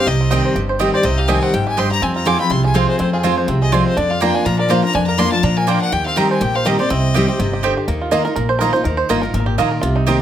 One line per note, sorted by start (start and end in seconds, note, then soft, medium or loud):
0.06 0.39 C2 medium
0.06 0.53 C3 medium
0.06 0.29 G4 medium
0.06 0.56 D#5 loud
0.21 1.05 C4 medium
0.30 0.55 D#3 medium
0.30 0.55 G3 loud
0.30 0.41 C4 medium
0.30 0.55 C4 loud
0.30 0.54 G4 medium
0.30 0.41 G4 medium
0.30 0.56 G4 medium
0.30 0.41 D#5 loud
0.30 0.41 G5 medium
0.45 0.69 C5 medium
0.55 0.88 G1 medium
0.55 1.02 G2 medium
0.55 0.79 G4 medium
0.69 0.93 C5 medium
0.79 1.03 D#3 medium
0.79 1.03 G3 medium
0.79 0.90 C4 medium
0.79 1.04 C4 medium
0.79 0.90 G4 medium
0.79 1.15 G4 medium
0.79 1.04 G4 medium
0.79 0.90 D#5 loud
0.79 0.90 G5 medium
0.94 1.78 C5 medium
0.94 1.06 D5 loud
1.03 1.37 C2 medium
1.03 1.51 C3 loud
1.03 1.42 C4 medium
1.03 1.19 D#5 loud
1.18 1.28 G4 medium
1.18 1.31 F5 medium
1.28 1.52 D#3 medium
1.28 1.52 G3 medium
1.28 1.38 C4 medium
1.28 1.52 C4 loud
1.28 1.38 G4 medium
1.28 1.52 G4 medium
1.28 1.53 G4 medium
1.28 1.39 D#5 loud
1.28 1.39 G5 medium
1.28 1.44 G#5 medium
1.42 2.02 C4 medium
1.42 1.55 F#5 loud
1.53 1.86 G1 medium
1.53 1.77 G#2 loud
1.53 1.66 G4 medium
1.53 1.67 G5 medium
1.67 1.90 G4 medium
1.67 1.80 G#5 loud
1.77 2.01 G2 medium
1.77 1.87 C4 medium
1.77 1.87 G4 medium
1.77 2.02 C5 medium
1.77 1.87 D#5 medium
1.77 1.88 G5 medium
1.77 1.91 C6 loud
1.91 2.02 G4 medium
1.91 2.04 A#5 loud
2.02 2.35 F2 medium
2.02 2.49 F2 medium
2.02 2.37 C4 medium
2.02 2.15 G#5 loud
2.16 2.50 F4 medium
2.16 2.28 A#5 loud
2.25 2.39 F3 medium
2.25 2.39 G#3 medium
2.25 2.36 C4 loud
2.25 2.39 C4 medium
2.25 2.36 F4 medium
2.25 2.37 F4 loud
2.25 2.62 G#4 medium
2.25 2.36 C5 medium
2.25 2.37 G#5 loud
2.25 2.40 D6 loud
2.38 2.73 C4 medium
2.38 2.51 C4 soft
2.38 2.50 F4 medium
2.38 2.53 B5 loud
2.50 2.83 C2 loud
2.50 2.97 C3 medium
2.50 3.13 F4 medium
2.50 2.64 C6 loud
2.64 2.88 G#4 medium
2.64 2.77 G#5 loud
2.74 2.98 F3 medium
2.74 2.98 G#3 loud
2.74 2.85 C4 medium
2.74 2.99 C4 loud
2.74 2.85 F4 medium
2.74 2.99 F4 medium
2.74 2.85 C5 medium
2.74 3.11 C5 medium
2.74 2.88 F5 medium
2.74 2.85 G#5 medium
2.89 3.22 G#4 medium
2.89 2.99 C5 medium
2.99 3.46 F2 medium
2.99 3.33 F2 medium
2.99 3.35 C4 medium
2.99 3.12 C5 medium
3.13 4.10 F4 medium
3.13 3.20 G#4 medium
3.23 3.47 F3 medium
3.23 3.47 G#3 loud
3.23 3.34 C4 medium
3.23 3.48 C4 loud
3.23 3.34 F4 loud
3.23 3.48 F4 medium
3.23 3.59 G#4 medium
3.23 3.34 C5 loud
3.23 3.34 G#5 loud
3.37 3.71 C5 medium
3.48 3.81 C2 loud
3.48 3.95 C3 medium
3.48 3.83 C4 medium
3.62 3.95 G#4 medium
3.62 3.73 D#5 loud
3.72 3.96 F3 medium
3.72 3.96 G#3 medium
3.72 3.82 C4 medium
3.72 3.97 C4 loud
3.72 3.82 F4 medium
3.72 3.97 F4 medium
3.72 3.97 C5 medium
3.72 3.83 C5 medium
3.72 3.85 D5 medium
3.72 3.83 G#5 medium
3.85 3.96 C4 soft
3.85 3.98 C5 loud
3.97 4.30 F2 loud
3.97 4.44 F2 medium
3.97 4.32 D4 medium
3.97 4.11 D5 medium
4.10 4.44 F4 medium
4.10 4.23 F5 medium
4.20 4.44 F3 medium
4.20 4.31 A#3 medium
4.20 4.45 A#3 medium
4.20 4.45 D4 medium
4.20 4.31 F4 loud
4.20 4.45 F4 loud
4.20 4.59 A#4 medium
4.20 4.32 D5 loud
4.20 4.36 G5 loud
4.20 4.32 A#5 loud
4.34 4.68 D4 medium
4.34 4.47 G#5 loud
4.46 4.79 A#2 medium
4.46 4.67 F3 medium
4.46 4.81 F4 medium
4.46 4.58 A#5 loud
4.59 4.82 A#4 medium
4.59 4.71 D5 medium
4.69 4.83 F3 medium
4.69 4.80 A#3 medium
4.69 4.83 A#3 medium
4.69 4.83 D4 medium
4.69 4.80 F4 medium
4.69 4.81 F4 loud
4.69 5.06 C5 medium
4.69 4.80 D5 medium
4.69 4.83 F5 medium
4.69 4.80 A#5 loud
4.82 4.94 D4 medium
4.82 4.94 F4 medium
4.82 5.07 A#4 medium
4.82 4.96 A#5 loud
4.93 5.41 F2 medium
4.93 5.28 F2 loud
4.93 5.18 D4 medium
4.93 5.06 G#5 loud
5.07 5.42 A#4 medium
5.07 5.20 A#5 loud
5.18 5.31 F3 medium
5.18 5.29 A#3 medium
5.18 5.32 A#3 loud
5.18 5.32 D4 medium
5.18 5.43 D4 medium
5.18 5.29 F4 medium
5.18 5.31 F4 loud
5.18 5.29 D5 loud
5.18 5.29 A#5 medium
5.18 5.32 C6 loud
5.32 5.44 D4 soft
5.32 5.43 F4 medium
5.32 5.66 F4 medium
5.32 5.44 A5 loud
5.43 5.76 A#2 medium
5.43 5.66 F3 medium
5.43 5.79 D4 medium
5.43 5.58 A#5 loud
5.57 5.90 A#4 medium
5.57 5.70 G#5 loud
5.67 5.91 F3 medium
5.67 5.77 A#3 medium
5.67 5.91 A#3 medium
5.67 5.92 D4 loud
5.67 5.78 F4 medium
5.67 5.92 F4 medium
5.67 5.78 D5 medium
5.67 5.81 G5 loud
5.67 5.78 A#5 medium
5.82 5.92 D4 medium
5.82 5.94 F#5 loud
5.92 6.25 D#2 medium
5.92 6.15 D#3 medium
5.92 6.16 G4 medium
5.92 6.06 G5 loud
6.06 6.39 C4 medium
6.06 6.18 F5 loud
6.16 6.40 D#3 medium
6.16 6.40 G3 medium
6.16 6.26 C4 medium
6.16 6.40 C4 loud
6.16 6.27 G4 medium
6.16 6.40 G4 medium
6.16 6.41 G4 loud
6.16 6.27 D#5 loud
6.16 6.29 G5 loud
6.16 6.27 A#5 loud
6.30 6.54 C5 medium
6.30 6.43 G#5 medium
6.41 6.74 A#1 medium
6.41 6.88 A#2 loud
6.41 6.65 G4 medium
6.41 6.57 G5 medium
6.55 6.79 C5 medium
6.55 6.67 F5 loud
6.65 6.78 D#3 medium
6.65 6.79 G3 medium
6.65 6.76 C4 medium
6.65 6.79 C4 loud
6.65 6.76 G4 medium
6.65 6.90 G4 medium
6.65 6.78 G4 loud
6.65 6.79 D#5 medium
6.65 6.76 D#5 medium
6.65 6.76 A#5 loud
6.79 6.90 C4 medium
6.79 6.89 G4 medium
6.79 6.90 C5 medium
6.79 6.91 D5 loud
6.90 7.23 C2 loud
6.90 7.37 C3 loud
6.90 7.25 C4 medium
6.90 7.63 D#5 loud
7.14 7.28 D#3 medium
7.14 7.28 G3 loud
7.14 7.24 C4 loud
7.14 7.28 C4 medium
7.14 7.24 G4 loud
7.14 7.38 G4 medium
7.14 7.27 G4 loud
7.14 7.25 D#5 medium
7.14 7.25 G5 loud
7.28 7.61 C4 medium
7.28 7.39 C4 soft
7.28 7.39 G4 medium
7.39 7.72 G1 loud
7.39 7.63 C3 loud
7.39 7.52 G4 medium
7.53 7.76 G4 medium
7.63 7.87 D3 medium
7.63 7.73 C4 medium
7.63 7.73 G4 medium
7.63 7.88 C5 medium
7.63 7.73 D#5 medium
7.63 7.73 G5 medium
7.77 7.88 G4 medium
7.88 8.21 D#2 medium
7.88 8.10 D#3 medium
7.88 8.52 A#3 medium
8.01 8.34 F4 medium
8.11 8.25 D#3 medium
8.11 8.22 A#3 medium
8.11 8.25 A#3 loud
8.11 8.25 D#4 medium
8.11 8.22 F4 medium
8.11 8.24 F4 medium
8.11 8.24 D#5 loud
8.11 8.22 D#5 medium
8.11 8.22 A#5 medium
8.25 8.37 D#4 soft
8.25 8.36 F4 medium
8.25 8.34 A#4 medium
8.36 8.69 A#1 loud
8.36 8.83 A#2 medium
8.36 8.49 A#4 medium
8.49 8.61 C5 loud
8.59 8.74 D#3 medium
8.59 8.71 A#3 medium
8.59 8.74 A#3 medium
8.59 8.75 D#4 medium
8.59 8.71 F4 medium
8.59 8.73 F4 medium
8.59 8.72 A#4 loud
8.59 8.71 D#5 medium
8.59 8.71 A#5 loud
8.73 8.86 D#4 medium
8.73 8.85 F4 medium
8.73 8.84 C5 loud
8.84 9.02 D#2 medium
8.84 9.08 D#3 medium
8.84 8.97 A#4 medium
8.97 9.23 C5 medium
9.09 9.30 G1 medium
9.09 9.23 D#3 medium
9.09 9.19 A#3 medium
9.09 9.23 A#3 medium
9.09 9.23 D#4 medium
9.09 9.20 F4 loud
9.09 9.22 F4 medium
9.09 9.22 A#4 medium
9.09 9.20 D#5 loud
9.09 9.20 A#5 loud
9.22 9.34 D#4 soft
9.22 9.34 F4 medium
9.22 9.33 A#4 loud
9.34 9.55 G#1 medium
9.34 9.81 A#2 medium
9.34 9.40 A#4 medium
9.40 9.46 A#4 medium
9.46 9.58 G4 loud
9.58 9.79 A#1 medium
9.58 9.82 D#3 medium
9.58 9.68 A#3 medium
9.58 9.82 A#3 medium
9.58 9.82 D#4 medium
9.58 9.80 F4 medium
9.58 9.68 F4 medium
9.58 9.83 F4 medium
9.58 9.68 D#5 medium
9.58 9.69 A#5 medium
9.71 9.83 A#4 medium
9.81 10.16 C2 medium
9.81 10.22 C3 loud
9.81 9.96 F4 medium
9.96 10.21 D#4 medium
10.06 10.20 D#3 medium
10.06 10.20 A#3 medium
10.06 10.17 C4 loud
10.06 10.21 C4 loud
10.06 10.17 G4 loud
10.06 10.22 G4 medium
10.06 10.19 G4 loud
10.06 10.17 D#5 loud
10.06 10.17 A#5 loud